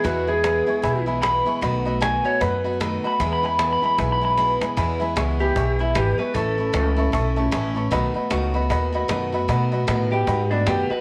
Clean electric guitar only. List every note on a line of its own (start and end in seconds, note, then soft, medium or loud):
0.04 0.27 F#4 loud
0.28 1.05 G#4 loud
1.22 1.99 B5 loud
2.02 2.25 G#5 loud
2.25 2.41 C#5 medium
2.41 2.79 B4 loud
3.07 3.20 B5 loud
3.33 3.45 B5 medium
3.46 3.59 B5 loud
3.73 3.84 B5 medium
3.86 3.98 B5 medium
4.12 4.24 B5 medium
4.25 4.76 B5 medium
5.40 5.78 G4 medium
5.81 5.95 E4 medium
5.96 6.18 G4 medium
6.19 6.34 B4 medium
6.34 7.49 A4 medium
10.12 10.50 G4 medium
10.51 10.66 D4 medium
10.67 10.90 G4 medium
10.91 11.01 B4 loud